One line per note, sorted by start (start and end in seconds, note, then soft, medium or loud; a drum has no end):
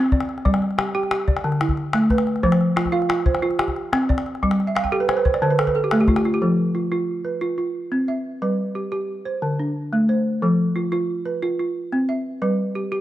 0.00 0.29 C4 medium
0.00 0.12 G4 medium
0.12 0.44 D5 medium
0.12 calabash thump medium
0.20 calabash click medium
0.29 calabash click soft
0.38 calabash click soft
0.45 0.78 G3 medium
0.45 0.95 D5 medium
0.45 calabash thump medium
0.45 calabash click soft
0.54 calabash click medium
0.62 calabash click soft
0.71 calabash click soft
0.78 0.94 G4 medium
0.78 calabash click medium
0.95 1.10 G4 medium
0.95 1.44 G5 medium
1.03 calabash click soft
1.11 1.61 G4 medium
1.11 calabash click medium
1.28 1.61 D5 medium
1.28 calabash thump medium
1.37 calabash click medium
1.44 1.77 D3 medium
1.44 calabash click soft
1.52 calabash click soft
1.61 2.11 E4 medium
1.61 calabash click medium
1.69 calabash thump medium
1.77 calabash click soft
1.93 2.27 A3 medium
1.93 calabash click medium
2.10 2.60 B4 medium
2.10 calabash thump medium
2.18 calabash click medium
2.27 calabash click soft
2.36 calabash click soft
2.43 2.77 F3 medium
2.43 2.93 C5 medium
2.43 calabash thump medium
2.43 calabash click soft
2.52 calabash click medium
2.61 calabash click soft
2.76 2.91 F4 medium
2.76 calabash click medium
2.86 calabash thump medium
2.92 3.08 F4 medium
2.92 3.42 F5 medium
3.02 calabash click soft
3.09 3.41 F4 medium
3.09 calabash click medium
3.26 3.76 C5 medium
3.26 calabash thump medium
3.35 calabash click medium
3.42 3.76 F4 medium
3.42 calabash click soft
3.51 calabash click soft
3.59 4.09 G4 medium
3.59 calabash click medium
3.68 calabash thump medium
3.76 calabash click soft
3.93 4.26 C4 medium
3.93 calabash click medium
4.09 4.59 D5 medium
4.09 calabash thump medium
4.18 calabash click medium
4.26 calabash click soft
4.35 calabash click soft
4.43 4.76 G3 medium
4.43 calabash thump medium
4.43 calabash click soft
4.51 calabash click medium
4.60 calabash click soft
4.67 4.83 E5 medium
4.67 calabash click soft
4.75 4.91 F5 medium
4.75 calabash click medium
4.84 4.99 G5 medium
4.84 calabash thump medium
4.92 5.25 G4 medium
4.92 5.07 A4 medium
4.92 calabash click soft
5.00 5.16 B4 medium
5.09 5.24 C5 medium
5.09 calabash click medium
5.17 5.32 B4 medium
5.25 5.41 C5 medium
5.25 calabash thump medium
5.34 5.49 D5 medium
5.34 calabash click soft
5.42 5.75 D3 medium
5.42 5.57 C5 medium
5.50 5.66 B4 medium
5.59 5.74 A4 medium
5.59 calabash click medium
5.67 5.82 B4 medium
5.67 calabash thump medium
5.75 5.91 A4 medium
5.75 calabash click soft
5.84 5.99 G4 medium
5.91 6.25 A3 medium
5.91 6.07 A4 medium
5.91 calabash click medium
6.00 6.16 G4 medium
6.08 6.24 F4 medium
6.08 calabash thump medium
6.08 calabash click soft
6.16 6.32 G4 medium
6.16 calabash click medium
6.25 6.41 F4 medium
6.25 calabash click soft
6.34 6.49 G4 medium
6.42 6.75 F3 medium
6.42 6.92 A4 medium
6.75 6.90 F4 medium
6.92 7.25 F4 medium
7.25 7.75 B4 medium
7.41 7.57 F4 medium
7.58 8.08 F4 medium
7.92 8.25 C4 medium
8.08 8.58 E5 medium
8.42 8.75 G3 medium
8.42 8.92 B4 medium
8.75 8.91 G4 medium
8.92 9.25 G4 medium
9.25 9.59 C5 medium
9.42 9.75 D3 medium
9.59 10.09 D4 medium
9.93 10.26 A3 medium
10.09 10.59 C5 medium
10.42 10.76 F3 medium
10.42 10.92 A4 medium
10.76 10.91 F4 medium
10.92 11.26 F4 medium
11.26 11.76 B4 medium
11.43 11.58 F4 medium
11.59 12.09 F4 medium
11.92 12.26 C4 medium
12.09 12.59 E5 medium
12.42 12.76 G3 medium
12.42 12.92 B4 medium
12.75 12.91 G4 medium
12.92 13.01 G4 medium